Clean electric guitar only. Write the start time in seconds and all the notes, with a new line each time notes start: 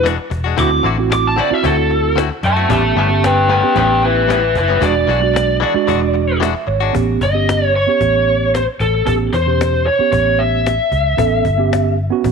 0.04 E3 G#3 D4 F#4
0.18 muted clean electric guitar stroke
0.30 muted clean electric guitar stroke
0.44 G#3 D4 F#4
0.57 D3 C4 E4 F#4
0.71 muted clean electric guitar stroke
0.83 D3 C4 E4 F#4
0.98 muted clean electric guitar stroke
1.10 muted clean electric guitar stroke
1.36 D3 C4 E4 F#4
1.51 muted clean electric guitar stroke
1.63 D3 C4 E4 F#4
1.77 muted clean electric guitar stroke
1.90 muted clean electric guitar stroke
2.16 D3 C4 E4 F#4
2.31 muted clean electric guitar stroke
2.43 muted clean electric guitar stroke
2.56 C4 E4 F#4
2.69 A2 G3 B3 C#4
2.84 muted clean electric guitar stroke
2.95 A2 G3 B3 C#4
3.10 muted clean electric guitar stroke
3.23 muted clean electric guitar stroke
3.49 A2 G3 B3 C#4
3.63 muted clean electric guitar stroke
3.75 A2 G3 B3 C#4
3.90 muted clean electric guitar stroke
4.02 muted clean electric guitar stroke
4.28 A2 G3 B3 C#4
4.42 muted clean electric guitar stroke
4.55 muted clean electric guitar stroke
4.68 G3 B3 C#4
4.81 E3 G#3 D4 F#4
4.95 muted clean electric guitar stroke
5.07 E3 G#3 D4 F#4
5.22 muted clean electric guitar stroke
5.34 muted clean electric guitar stroke
5.60 E3 G#3 D4 F#4
5.75 muted clean electric guitar stroke
5.87 E3 G#3 D4 F#4
6.02 muted clean electric guitar stroke
6.14 muted clean electric guitar stroke
6.40 E3 G#3 D4 F#4
6.55 muted clean electric guitar stroke
6.67 muted clean electric guitar stroke
6.80 G#3 D4 F#4